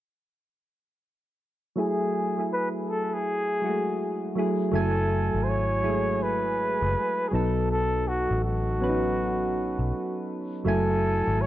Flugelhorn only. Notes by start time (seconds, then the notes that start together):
1.78 G#4
2.53 B4
2.89 A4
3.13 G#4
4.74 A4
5.43 C5
5.49 C#5
6.23 B4
7.28 G#4
7.34 A4
7.71 A4
8.08 F#4
8.44 F#4
10.68 A4
11.41 C#5